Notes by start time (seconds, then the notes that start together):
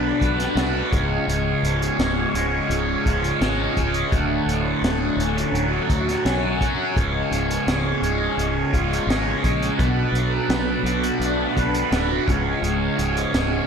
Already playing: B1 B2 F#3 B3 D4 F#4 A4 B4
0.20 B1 B4, kick, closed hi-hat
0.40 snare, closed hi-hat
0.55 C2 F#4, snare, closed hi-hat
0.90 C#1 C#2 C#4 F4 G#4 C#5, kick, closed hi-hat
1.27 C#1 C#2, closed hi-hat
1.63 C#1 G#2, closed hi-hat
1.82 closed hi-hat
1.98 C#1 G#2, snare, closed hi-hat
2.34 C#1 G#3, closed hi-hat
2.69 C#1 C#3, closed hi-hat
3.06 C#1 F4, kick, closed hi-hat
3.24 closed hi-hat
3.41 G#1 G#3, snare, closed hi-hat
3.77 C#1 C#3, kick, closed hi-hat
3.94 closed hi-hat
4.11 D1 D2 F#4 A4, kick, closed hi-hat
4.46 D1 A2, closed hi-hat
4.82 D1 D3, snare, closed hi-hat
5.17 D1 C#4, closed hi-hat
5.38 closed hi-hat
5.52 D1 F#3, closed hi-hat
5.89 D2 F#4, kick, closed hi-hat
6.09 snare, closed hi-hat
6.24 B1 C#4, snare, closed hi-hat
6.59 F#3, kick, closed hi-hat
6.91 C#4 F4 G#4
6.96 C#1 C#2, kick, closed hi-hat
7.30 C#1 G#2, closed hi-hat
7.51 closed hi-hat
7.67 C#1 G#2, snare, closed hi-hat
8.02 C#1 G#3, closed hi-hat
8.37 C#1 C#3, closed hi-hat
8.73 C#1 F4, kick, closed hi-hat
8.93 closed hi-hat
9.07 G#1 G#3, snare, closed hi-hat
9.44 A#1 C#3, kick, closed hi-hat
9.62 closed hi-hat
9.77 B1 B2 D4 F#4 A4 B4, kick, closed hi-hat
10.12 B1, closed hi-hat
10.16 F#3
10.49 B1 B3, snare, closed hi-hat
10.83 B1 F#4, closed hi-hat
11.04 closed hi-hat
11.20 B1 D4, closed hi-hat
11.57 B1 B4, kick, closed hi-hat
11.74 closed hi-hat
11.92 D1 F#4, snare, closed hi-hat
12.26 C#1 C#2 C#4 F4 G#4 C#5, kick, closed hi-hat
12.62 C#1 C#2, closed hi-hat
12.97 C#1 G#2, closed hi-hat
13.17 closed hi-hat
13.32 C#1 G#2, snare, closed hi-hat